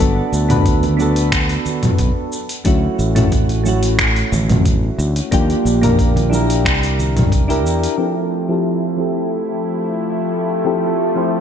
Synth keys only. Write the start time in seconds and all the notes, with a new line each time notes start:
Already playing: B3
0.00 D4 F#4 A4
0.49 B3 D4 F#4 B4
0.97 B3 D4 F#4
1.02 A4
2.65 A3 C#4 E4 F#4
3.15 A3 C#4 E4 F#4
3.64 A3 C#4 E4
3.68 F#4
5.31 A#3 D4 F4 G4
5.82 A#3 D4 F4 A#4
6.30 D4 E4 G4
6.35 A#4
7.48 D4 E4 G4 A#4
7.98 F3 C4 E4 G4 A4
8.49 F3 C4 E4 G4 A4
8.96 F3 C4 E4 G4
9.01 A4
10.65 F3 C4 E4 G4 A4
11.15 F3 C4 E4 G4 C5